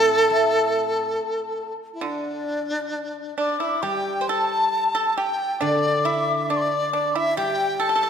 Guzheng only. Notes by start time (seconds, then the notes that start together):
Already playing: A2 E3 A3 C4
0.30 E4
3.82 G3
5.62 D3
7.37 G3